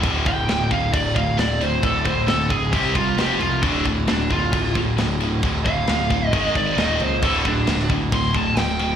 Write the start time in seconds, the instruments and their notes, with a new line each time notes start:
0.03 picked electric bass D1, distorted electric guitar D2 A2 D3, kick, crash
0.26 picked electric bass D1, distorted electric guitar D2 A2, lead electric guitar G5, kick, crash
0.48 picked electric bass D1, distorted electric guitar D2 A2, snare, crash
0.71 picked electric bass D1, distorted electric guitar D2 A2, lead electric guitar F5, kick, crash
0.93 picked electric bass D1, distorted electric guitar D2 A2, lead electric guitar D5, kick, crash
1.15 picked electric bass D1, distorted electric guitar D2 A2, lead electric guitar F5, kick, crash
1.37 picked electric bass D1, distorted electric guitar D2 A2, lead electric guitar D5, snare, crash
1.61 distorted electric guitar D2 A2, lead electric guitar C5, crash
1.83 picked electric bass D1, distorted electric guitar D2 A2 D3, lead electric guitar A4, kick, crash
2.05 picked electric bass D1, distorted electric guitar D2 A2, lead electric guitar C5, kick, crash
2.28 picked electric bass D1, distorted electric guitar D2 A2, lead electric guitar A4, snare, crash
2.50 distorted electric guitar D2 A2, lead electric guitar G#4, kick, crash
2.72 picked electric bass C2, distorted electric guitar C3 G3 C4, lead electric guitar G4, kick, crash
2.95 distorted electric guitar C3 G3, lead electric guitar F4, kick, crash
3.18 picked electric bass F1, distorted electric guitar F2 C3 F3, lead electric guitar G4, snare, crash
3.40 picked electric bass C2, distorted electric guitar F2 C3, lead electric guitar F4, crash
3.62 picked electric bass D1, distorted electric guitar D2 A2 D3, lead electric guitar D4, kick, crash
3.85 picked electric bass D1, distorted electric guitar D2 A2, kick, crash
4.07 picked electric bass D1, distorted electric guitar D2 A2, lead electric guitar D4, snare, crash
4.30 picked electric bass D1, distorted electric guitar D2 A2, lead electric guitar F4, kick, crash
4.52 picked electric bass D1, distorted electric guitar D2 A2, kick, crash
4.75 picked electric bass D1, distorted electric guitar D2 A2, kick, crash
4.97 picked electric bass D1, distorted electric guitar D2 A2, snare, crash
5.20 distorted electric guitar D2 A2, crash
5.43 picked electric bass D1, distorted electric guitar D2 A2 D3, kick, crash
5.65 picked electric bass D1, distorted electric guitar D2 A2, lead electric guitar F5, kick, crash
5.87 picked electric bass D1, distorted electric guitar D2 A2, snare, crash
6.10 distorted electric guitar D2 A2, kick, crash
6.25 lead electric guitar D#5
6.32 picked electric bass G#1, distorted electric guitar G#2 D#3 G#3, kick, crash
6.55 distorted electric guitar G#2 D#3, lead electric guitar D5, kick, crash
6.77 picked electric bass D#1, distorted electric guitar D#2 A#2 D#3, lead electric guitar D#5, snare, crash
7.00 picked electric bass C#2, distorted electric guitar D#2 A#2, lead electric guitar C5, crash
7.22 picked electric bass D1, distorted electric guitar D2 A2 D3, lead electric guitar A4, kick, crash
7.45 picked electric bass D1, distorted electric guitar D2 A2, lead electric guitar D4, kick, crash
7.66 picked electric bass D1, distorted electric guitar D2 A2, snare, crash
7.79 snare
7.89 picked electric bass D1, distorted electric guitar D2 A2, kick, crash
8.12 picked electric bass D1, distorted electric guitar D2 A2, lead electric guitar C6, kick, crash
8.34 picked electric bass D1, distorted electric guitar D2 A2, lead electric guitar A5, kick, crash
8.55 picked electric bass D1, distorted electric guitar D2 A2, lead electric guitar G5, snare, crash
8.79 distorted electric guitar D2 A2, crash